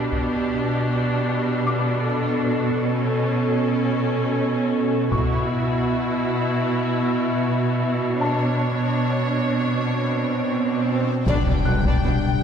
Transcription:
Already playing: cello section B2, viola section D4 G4
0.12 taiko
1.67 felt piano D6
2.04 viola section A4
2.80 viola section C#4
5.11 cello section B2, viola section E4 F#4, felt piano C#6, taiko
8.20 viola section D4 C#5, felt piano A5, swell
11.27 double bass section B1, analog synth bass B2, cello section B2, french horn section G3 D4, viola section D4, violin section D5 G5, taiko, impact
11.47 analog synth bass B2, cello section B2, viola section D4, violin section D5
11.65 double bass section B1, analog synth bass B2, cello section B2, viola section D4, violin section B4, felt piano F#6
11.85 cello section B2, analog synth bass B2, viola section D4, violin section D5, taiko
12.04 double bass section B1, cello section B2, analog synth bass B2, viola section D4, violin section D5
12.24 analog synth bass B2

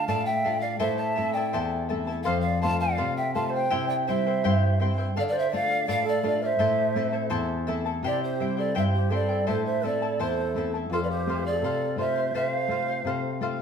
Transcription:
Already playing: nylon-string guitar A3 D4 F4
0.08 nylon-string guitar A2, charango A4 D5 F5, quena F5, pan flute A5
0.25 quena E5, pan flute G5
0.45 nylon-string guitar A3 D4 F4, charango A4 D5 F5
0.61 quena D5, charango D5 F5, pan flute F5
0.79 nylon-string guitar A2, charango E4 A4 C5 E5 A5, quena C5, pan flute E5
0.97 quena E5, pan flute A5
1.16 nylon-string guitar A3 C4 E4, charango E4 A4 E5 A5
1.33 charango E4 A4 A5, quena D5, pan flute G5
1.53 nylon-string guitar E2, charango E4 A4 C5 E5 A5
1.89 nylon-string guitar A3 C4 E4, charango E4 A4 E5 A5
2.07 charango E4 A4 A5
2.23 nylon-string guitar F2, charango A4 C5 F5, quena C5, pan flute F5
2.41 pan flute F5
2.45 quena D5
2.62 nylon-string guitar A3 C4 F4, charango A4 C5 F5, quena F5, pan flute A5
2.80 charango C5 F5, quena D5, pan flute F5
2.97 nylon-string guitar C3, charango A4 C5 F5
3.16 quena E5, pan flute G5
3.35 nylon-string guitar A3 C4 F4, charango A4 C5 F5, quena F5, pan flute A5
3.47 quena C5 F5, pan flute A5
3.53 charango C5 F5, pan flute G5
3.70 nylon-string guitar C3, charango E4 G4 C5 E5 G5
3.87 quena D5, pan flute G5
4.04 charango E4 E5, quena C5, pan flute E5
4.08 nylon-string guitar G3 C4 E4, charango C5 G5
4.27 charango E4 C5 G5
4.44 nylon-string guitar G2, charango E4 G4 C5 E5 G5
4.80 nylon-string guitar G3 C4 E4, charango E4 C5 E5 G5
4.98 charango E4 C5 G5
5.16 nylon-string guitar D3, quena A4, charango A4 D5 F5
5.20 quena A4, pan flute D5
5.28 quena C5, pan flute D5
5.38 pan flute E5
5.50 nylon-string guitar A3 D4 F4, charango A4 D5 F5, quena D5
5.55 pan flute F5
5.70 charango D5 F5
5.86 nylon-string guitar A2, charango A4 D5 F5, quena D5, pan flute F5
6.04 quena A4
6.09 pan flute D5
6.22 nylon-string guitar A3 D4 F4, quena A4, charango A4 D5 F5
6.27 pan flute D5
6.42 quena C5 D5, charango D5 F5, pan flute E5
6.59 nylon-string guitar A2, charango E4 A4 C5 E5 A5
6.95 nylon-string guitar A3 C4 E4, charango E4 A4 E5 A5
7.12 charango E4 A4 A5
7.30 nylon-string guitar E2, charango E4 A4 C5 E5 A5
7.67 nylon-string guitar A3 C4 E4, charango E4 A4 E5 A5
7.86 charango E4 A4 A5
8.03 nylon-string guitar C3, charango E4 G4 C5 E5 G5, quena G4, pan flute D5
8.23 quena G4, pan flute C5
8.40 nylon-string guitar G3 C4 E4, charango E4 C5 E5 G5
8.57 charango E4 C5 G5, quena A4, pan flute D5
8.75 nylon-string guitar G2, charango E4 G4 C5 E5 G5, quena C5, pan flute E5
8.95 quena G4, pan flute C5
9.10 nylon-string guitar G3 C4 E4, charango E4 C5 E5 G5, quena A4
9.14 pan flute D5
9.29 charango E4 C5 G5
9.46 nylon-string guitar A2, charango E4 A4 C5 E5 A5, quena A4, pan flute C5
9.66 quena C5, pan flute E5
9.83 nylon-string guitar A3 C4 E4, charango E4 A4 E5 A5, quena A4, pan flute D5
10.02 charango E4 A4 A5
10.19 nylon-string guitar E2, charango E4 A4 C5 E5 A5, quena A4, pan flute C5
10.55 nylon-string guitar A3 C4 E4, charango E4 A4 E5 A5
10.74 charango E4 A4 A5
10.90 nylon-string guitar F2, quena F4, charango A4 C5 F5, pan flute A4
11.03 quena B4, pan flute D5
11.10 quena G4, pan flute C5
11.27 nylon-string guitar A3 C4 F4, charango A4 C5 F5
11.45 quena G#4, charango C5 F5, pan flute D5
11.56 quena A4
11.62 nylon-string guitar C3, charango A4 C5 F5
11.96 nylon-string guitar A3 C4 F4, charango A4 C5 F5, quena C5
12.00 pan flute E5
12.16 charango C5 F5
12.34 nylon-string guitar C3, charango A4 C5 F5, quena C5, pan flute E5
12.50 pan flute F5
12.68 nylon-string guitar A3 C4 F4, charango A4 C5 F5
12.88 charango C5 F5
13.05 nylon-string guitar C3, charango A4 C5 F5
13.40 nylon-string guitar A3 C4 F4, charango A4 C5 F5

